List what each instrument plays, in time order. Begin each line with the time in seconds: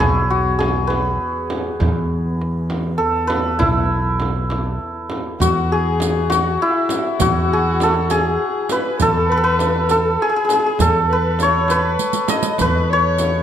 Already playing: double bass E2, santur F#4 B4 C#5
0.00 fretless electric bass B1, santur G#4, tombak dum, frame drum
0.30 santur F#4
0.59 santur G#4, tombak tek, frame drum
0.87 santur B4, tombak tek, frame drum
1.50 tombak tek, frame drum
1.79 double bass E2, fretless electric bass E2, frame drum, tombak dum
2.41 tombak tek
2.70 tombak tek, frame drum
2.98 santur A4
3.27 santur B4, tombak tek, frame drum
3.59 fretless electric bass B1, santur E4, frame drum, tombak dum
4.20 tombak tek, frame drum
4.50 tombak tek, frame drum
5.10 tombak tek, frame drum
5.40 fretless electric bass E2, kamancheh F#4, santur F#4, riq, frame drum, tombak dum
5.72 kamancheh G#4, santur G#4
6.00 riq, tombak tek, frame drum
6.30 santur F#4, kamancheh F#4, riq, tombak tek, frame drum
6.62 kamancheh E4, santur E4
6.89 riq, tombak tek, frame drum
7.19 fretless electric bass E2, kamancheh F#4, santur F#4, riq, frame drum, tombak dum
7.53 santur G#4
7.80 santur A4, riq, tombak tek, frame drum
8.10 santur G#4, kamancheh G#4, riq, tombak tek, frame drum
8.69 kamancheh B4, santur B4, riq, tombak tek, frame drum
9.00 fretless electric bass E2, kamancheh A4, santur A4, riq, tombak dum, frame drum
9.30 kamancheh B4, santur B4
9.37 santur A4
9.43 kamancheh B4, santur B4
9.59 riq, tombak tek, frame drum
9.89 santur A4, kamancheh A4, riq, tombak tek, frame drum
10.21 kamancheh G#4, santur G#4
10.29 santur G#4
10.36 santur G#4
10.45 santur G#4
10.49 riq, tombak tek, frame drum
10.53 santur G#4
10.59 santur G#4
10.66 santur G#4
10.79 fretless electric bass E2, kamancheh A4, santur A4, riq, frame drum, tombak dum
11.10 kamancheh B4, santur B4
11.39 kamancheh C#5, santur C#5, riq, tombak tek, frame drum
11.68 kamancheh B4, santur B4, riq, tombak tek, frame drum
11.99 riq, tombak ka
12.13 riq
12.28 kamancheh D#5, santur D#5, riq, tombak tek, frame drum
12.43 riq
12.58 fretless electric bass E2, kamancheh B4, santur B4, riq, frame drum, tombak dum
12.90 kamancheh C#5, santur C#5
13.18 riq, tombak tek, frame drum